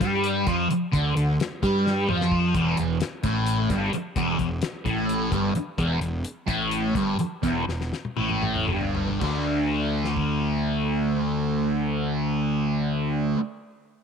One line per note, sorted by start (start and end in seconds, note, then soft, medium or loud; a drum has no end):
0.00 0.44 G2 medium
0.00 0.46 G3 loud
0.00 kick medium
0.00 closed hi-hat medium
0.24 closed hi-hat medium
0.47 0.68 F2 medium
0.47 0.69 F3 medium
0.47 kick medium
0.47 closed hi-hat medium
0.70 muted distorted electric guitar stroke soft
0.70 muted fingered electric bass stroke soft
0.70 closed hi-hat medium
0.92 1.15 D2 medium
0.92 1.15 D3 medium
0.92 kick medium
0.92 closed hi-hat medium
1.16 1.38 D2 medium
1.16 1.34 D3 medium
1.16 closed hi-hat medium
1.40 snare loud
1.40 closed hi-hat medium
1.63 2.05 G2 medium
1.63 2.08 G3 medium
1.63 kick medium
1.63 closed hi-hat medium
1.87 snare medium
2.08 2.52 F2 medium
2.08 2.54 F3 medium
2.08 mid tom medium
2.21 snare medium
2.32 kick medium
2.55 2.76 E1 medium
2.55 2.77 E2 medium
2.55 kick medium
2.55 closed hi-hat medium
2.77 2.99 E1 medium
2.77 2.97 E2 medium
2.77 closed hi-hat medium
3.01 snare medium
3.01 closed hi-hat medium
3.23 3.67 A1 medium
3.23 3.69 A2 medium
3.23 kick loud
3.23 closed hi-hat medium
3.46 closed hi-hat medium
3.70 3.91 G1 medium
3.70 3.92 G2 medium
3.70 kick medium
3.70 closed hi-hat medium
3.93 muted distorted electric guitar stroke soft
3.93 muted fingered electric bass stroke soft
3.93 closed hi-hat medium
4.16 4.37 E1 medium
4.16 4.38 E2 medium
4.16 kick medium
4.16 closed hi-hat medium
4.39 4.61 E1 medium
4.39 4.58 E2 medium
4.39 kick medium
4.39 closed hi-hat medium
4.62 snare loud
4.62 closed hi-hat medium
4.85 5.29 A1 medium
4.85 5.31 A2 medium
4.85 kick medium
4.85 closed hi-hat medium
5.09 closed hi-hat medium
5.32 5.53 G1 medium
5.32 5.54 G2 medium
5.32 kick medium
5.32 closed hi-hat medium
5.55 muted fingered electric bass stroke soft
5.55 muted distorted electric guitar stroke soft
5.55 closed hi-hat medium
5.78 5.99 E1 medium
5.78 6.00 E2 medium
5.78 kick medium
5.78 closed hi-hat medium
6.01 6.23 E1 medium
6.01 6.19 E2 medium
6.01 closed hi-hat medium
6.25 closed hi-hat medium
6.47 6.92 A1 medium
6.47 6.94 A2 medium
6.47 kick medium
6.47 closed hi-hat medium
6.71 closed hi-hat medium
6.95 7.17 G1 medium
6.95 7.18 G2 medium
6.95 kick medium
6.95 closed hi-hat medium
7.18 muted fingered electric bass stroke soft
7.18 muted distorted electric guitar stroke soft
7.18 closed hi-hat medium
7.43 7.66 E1 medium
7.43 7.66 E2 medium
7.43 kick medium
7.43 closed hi-hat medium
7.67 7.91 E1 medium
7.67 7.87 E2 medium
7.67 snare soft
7.81 snare soft
7.93 snare soft
8.05 high tom soft
8.16 8.65 A1 medium
8.16 8.67 A2 medium
8.16 high tom medium
8.29 mid tom soft
8.43 mid tom medium
8.55 mid tom medium
8.67 9.18 G1 medium
8.67 9.20 G2 medium
8.67 mid tom medium
8.81 floor tom medium
8.95 floor tom medium
9.08 floor tom medium
9.20 13.34 D2 medium
9.20 13.36 D3 medium
9.20 13.38 A3 medium
9.20 13.40 D4 medium
9.20 kick medium
9.20 crash medium
10.05 snare soft
10.17 kick medium